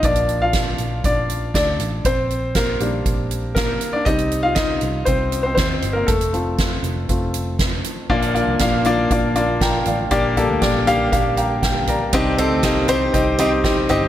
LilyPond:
<<
  \new Staff \with { instrumentName = "Grand piano" } { \time 4/4 \key bes \major \tempo 4 = 119 << { d''8. <f' f''>4~ <f' f''>16 <d' d''>4 <d' d''>4 | <c' c''>4 <bes bes'>4 r4 <bes bes'>8. <d' d''>16 | ees''8. <f' f''>16 <ees' ees''>4 <c' c''>8. <c' c''>16 <c' c''>8. <bes bes'>16 | <a a'>2 r2 |
r2. <g'' bes''>8 <d'' f''>8~ | <d'' f''>8 r2 <f'' g'' bes''>8 g''8 <bes' d'' bes''>8~ | <bes' d'' bes''>8 r2. r8 | } \\ { r1 | r1 | r1 | r1 |
<bes d' f' d''>8 <bes d' f' d''>8 <bes d' f' f''>8 <bes d' f' d''>8 <bes d' f' d''>8 <bes d' f' d''>8 r4 | <bes d' g' d''>8 <bes d' g' a'>8 <bes d' g' d''>8 <bes d' g' f''>8 <bes d' g' f''>8 r4. | <c' ees' g' ees''>8 <c' ees' g' a'>8 <c' ees' g' ees''>8 <c' ees' g' c''>8 <c' ees' g' ees''>8 <c' ees' g' ees''>8 <c' ees' g' ees''>8 <c' ees' g' ees''>8 | } >> }
  \new Staff \with { instrumentName = "Grand piano" } { \time 4/4 \key bes \major <f bes d'>4. r2 r8 | r4. <g bes d'>2~ <g bes d'>8 | <g c' ees'>1 | r8 <a c' f'>4. <a c' f'>8 r4. |
<bes, f>4. r2 r8 | bes,4. r2 r8 | <c g>4. r2 r8 | }
  \new Staff \with { instrumentName = "Steel-string acoustic guitar" } { \time 4/4 \key bes \major r1 | r1 | r1 | r1 |
r1 | r1 | d'8 c'8 bes8 c'16 r8. c'16 r4 r16 | }
  \new Staff \with { instrumentName = "Tonewheel organ" } { \time 4/4 \key bes \major r1 | r1 | r1 | r1 |
<f f'>1 | <g g'>1~ | <g g'>1 | }
  \new Staff \with { instrumentName = "Tonewheel organ" } { \clef bass \time 4/4 \key bes \major r1 | r1 | r1 | r1 |
<d bes>1~ | <d bes>1 | <ees c'>1 | }
  \new Staff \with { instrumentName = "Fingered electric bass" } { \clef bass \time 4/4 \key bes \major bes,,4. bes,,8 bes,,4 d,8 a,,8 | bes,,4. bes,,8 bes,,4. r8 | c,4. c,8 c,4 ees,8 g,,8 | f,,4. f,,8 f,,4. r8 |
bes,,8. c,16 bes,,4 bes,,4. a,,8 | bes,,8. d,16 bes,,4 bes,,2 | c,8. d,16 c,4 c,4. g,,8 | }
  \new DrumStaff \with { instrumentName = "Drums" } \drummode { \time 4/4 <hh bd>16 hh16 hh8 <hh bd sn>8 hh8 <hh bd>8 hh8 <hh bd sn>8 hh8 | <hh bd>8 hh8 <hh bd sn>8 hh8 <hh bd>8 hh8 <hh bd sn>8 hh8 | <hh bd>16 hh16 hh8 <hh bd sn>8 hh8 <hh bd>8 hh8 <hh bd sn>8 hh8 | <hh bd>16 hh16 hh8 <hh bd sn>8 hh8 <hh bd>8 hh8 <hh bd sn>8 hh8 |
<cymc bd>16 hh16 hh8 <hh bd sn>8 hh8 <hh bd>8 hh8 <hh bd sn>8 hh8 | <hh bd>8 <hh tomfh>8 <hh bd sn>8 <hh tomfh>8 <hh bd>8 hh8 <hh bd sn>8 <hh tomfh>8 | <hh bd>8 <hh tomfh>8 <hh bd sn>8 <hh tomfh>8 <hh bd>8 hh8 <hh bd sn>8 <hh tomfh>8 | }
>>